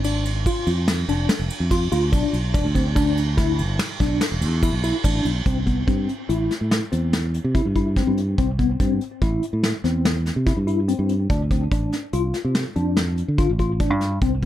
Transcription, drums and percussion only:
0.04 ride medium
0.25 ride medium
0.46 kick loud
0.46 ride medium
0.67 ride medium
0.88 snare loud
0.88 ride medium
1.09 ride medium
1.29 snare loud
1.29 ride medium
1.50 ride medium
1.71 kick loud
1.71 snare soft
1.71 ride medium
1.92 ride medium
2.13 kick loud
2.13 ride medium
2.34 ride medium
2.54 kick loud
2.54 ride medium
2.75 kick medium
2.75 ride medium
2.96 kick loud
2.96 ride medium
3.17 ride medium
3.38 kick loud
3.38 snare soft
3.38 ride medium
3.59 ride medium
3.79 snare loud
3.79 ride medium
4.00 kick medium
4.00 snare soft
4.00 ride medium
4.21 snare loud
4.21 ride medium
4.42 ride medium
4.63 kick loud
4.63 ride medium
4.83 ride medium
5.04 kick loud
5.04 ride medium
5.25 ride medium
5.46 kick loud
5.46 closed hi-hat medium
5.67 kick medium
5.67 closed hi-hat medium
5.88 kick loud
5.88 closed hi-hat medium
6.09 closed hi-hat medium
6.30 closed hi-hat medium
6.51 snare soft
6.51 closed hi-hat medium
6.71 snare medium
6.71 closed hi-hat medium
6.92 closed hi-hat medium
7.13 snare loud
7.13 closed hi-hat medium
7.34 closed hi-hat medium
7.55 kick loud
7.55 closed hi-hat medium
7.76 kick medium
7.76 closed hi-hat medium
7.96 kick medium
7.96 snare soft
7.96 closed hi-hat medium
8.17 closed hi-hat medium
8.38 kick loud
8.38 closed hi-hat medium
8.59 kick medium
8.59 closed hi-hat medium
8.80 kick loud
8.80 closed hi-hat medium
9.01 closed hi-hat medium
9.22 kick loud
9.22 closed hi-hat medium
9.43 closed hi-hat medium
9.63 snare loud
9.63 closed hi-hat medium
9.84 snare soft
9.84 closed hi-hat medium
10.05 snare loud
10.05 closed hi-hat medium
10.26 snare soft
10.26 closed hi-hat medium
10.47 kick loud
10.47 snare soft
10.47 closed hi-hat medium
10.68 closed hi-hat medium
10.88 closed hi-hat medium
11.09 closed hi-hat medium
11.30 kick loud
11.30 closed hi-hat medium
11.51 kick medium
11.51 closed hi-hat medium
11.72 kick loud
11.72 closed hi-hat medium
11.92 snare soft
11.92 closed hi-hat medium
12.13 closed hi-hat medium
12.34 snare soft
12.34 closed hi-hat medium
12.55 snare loud
12.55 closed hi-hat medium
12.76 closed hi-hat medium
12.97 snare loud
12.97 closed hi-hat medium
13.18 closed hi-hat medium
13.38 kick loud
13.38 closed hi-hat medium
13.59 kick medium
13.59 closed hi-hat medium
13.80 kick medium
13.80 closed hi-hat medium
14.01 snare soft
14.01 closed hi-hat medium
14.21 kick loud
14.21 closed hi-hat medium

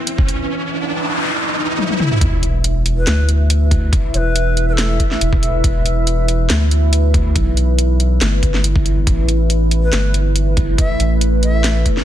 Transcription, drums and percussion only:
0.07 closed hi-hat medium
0.18 kick loud
0.28 closed hi-hat medium
1.79 high tom medium
1.90 high tom medium
2.00 mid tom medium
2.11 mid tom medium
2.21 kick loud
2.21 closed hi-hat medium
2.43 closed hi-hat medium
2.64 closed hi-hat medium
2.86 closed hi-hat medium
3.07 snare loud
3.07 closed hi-hat medium
3.29 closed hi-hat medium
3.50 closed hi-hat medium
3.71 kick loud
3.71 closed hi-hat medium
3.93 kick loud
3.93 closed hi-hat medium
4.14 closed hi-hat medium
4.36 closed hi-hat medium
4.57 closed hi-hat medium
4.78 snare loud
4.78 closed hi-hat medium
5.00 kick medium
5.00 closed hi-hat medium
5.11 snare soft
5.21 closed hi-hat medium
5.33 kick loud
5.43 closed hi-hat medium
5.64 kick loud
5.64 closed hi-hat medium
5.86 closed hi-hat medium
6.07 closed hi-hat medium
6.28 closed hi-hat medium
6.50 snare loud
6.50 closed hi-hat medium
6.71 closed hi-hat medium
6.93 closed hi-hat medium
7.14 kick loud
7.14 closed hi-hat medium
7.36 kick loud
7.36 closed hi-hat medium
7.57 closed hi-hat medium
7.79 closed hi-hat medium
8.00 closed hi-hat medium
8.21 snare loud
8.21 closed hi-hat medium
8.43 kick medium
8.43 closed hi-hat medium
8.54 snare soft
8.64 closed hi-hat medium
8.76 kick loud
8.86 closed hi-hat medium
9.07 kick loud
9.07 closed hi-hat medium
9.29 closed hi-hat medium
9.50 closed hi-hat medium
9.71 closed hi-hat soft
9.93 snare loud
9.93 closed hi-hat medium
10.14 closed hi-hat soft
10.36 closed hi-hat medium
10.57 kick loud
10.57 closed hi-hat medium
10.78 kick loud
10.78 closed hi-hat medium
11.00 closed hi-hat medium
11.21 closed hi-hat medium
11.43 closed hi-hat medium
11.64 snare loud
11.64 closed hi-hat medium
11.86 kick medium
11.86 closed hi-hat soft
11.97 snare soft

